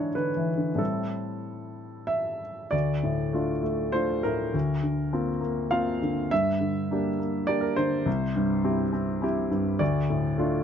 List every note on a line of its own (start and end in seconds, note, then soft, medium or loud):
0.00 0.75 G#2 soft
0.00 0.17 D3 soft
0.00 0.36 E3 soft
0.00 0.82 D4 soft
0.00 0.78 E4 soft
0.00 0.15 C#5 medium
0.15 0.50 D3 soft
0.15 0.79 B4 medium
0.36 0.71 E3 soft
0.57 0.79 D3 soft
0.75 2.67 A2 soft
0.75 2.67 G3 soft
0.75 2.68 C4 soft
0.75 2.68 E4 soft
0.75 2.41 A4 soft
2.07 2.72 E5 medium
2.71 4.49 D2 soft
2.71 3.93 D5 medium
3.03 3.52 A2 soft
3.33 3.60 A3 soft
3.33 3.61 D4 soft
3.33 3.61 F4 soft
3.63 3.91 A3 soft
3.92 4.20 A3 soft
3.92 4.21 D4 soft
3.92 4.21 F4 soft
3.92 4.23 C5 medium
4.23 4.54 A2 soft
4.23 5.72 A#4 medium
4.54 6.27 D2 soft
4.83 5.31 D3 soft
5.13 5.39 A#3 soft
5.13 5.40 C4 soft
5.13 5.40 F4 soft
5.40 5.70 A#3 soft
5.71 5.98 A#3 soft
5.71 5.98 C4 soft
5.71 5.98 F4 soft
5.71 6.30 F5 medium
6.02 6.31 D3 soft
6.31 8.03 G2 soft
6.31 7.49 E5 medium
6.60 7.08 D3 soft
6.91 7.17 A#3 soft
6.91 7.17 D4 soft
6.91 7.18 G4 soft
7.20 7.47 A#3 soft
7.47 7.74 A#3 soft
7.47 7.75 D4 soft
7.47 7.75 G4 soft
7.47 7.62 D5 medium
7.61 7.76 A#4 medium
7.76 8.06 D3 soft
7.76 9.23 C5 medium
8.06 9.76 C2 medium
8.36 8.83 G2 soft
8.64 8.91 C4 soft
8.64 8.91 E4 soft
8.64 8.91 G4 soft
8.93 9.20 C4 soft
9.22 9.48 C4 soft
9.22 9.49 E4 soft
9.22 9.49 G4 medium
9.51 9.80 G2 soft
9.79 10.64 D2 medium
9.79 10.64 D5 medium
10.10 10.57 A2 soft
10.38 10.64 A3 soft
10.38 10.64 D4 soft
10.38 10.64 F4 medium